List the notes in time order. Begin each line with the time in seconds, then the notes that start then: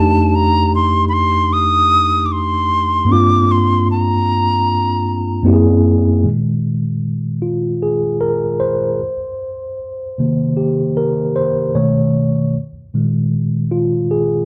Already playing: F2 A3 D4 D#4 G4 A5
0.29 A5
0.35 A#5
0.75 C6
1.09 B5
1.13 C6
1.53 D#6
2.26 D6
2.32 C6
3.05 G2 A#3
3.09 C4 D4 F4 D6
3.51 C6
3.91 A#5
5.43 F#2 A#3 C4 E4
5.47 G4
5.53 G#4
6.23 A#2 D#3 G#3
7.42 F4
7.82 G#4
8.21 A#4
8.60 C5
10.18 C3 D#3 A#3
10.57 G4
10.97 A#4
11.36 C5
11.75 B2 D#3 A3 C#5
12.94 A#2 D#3 G#3
13.71 F4
14.11 G#4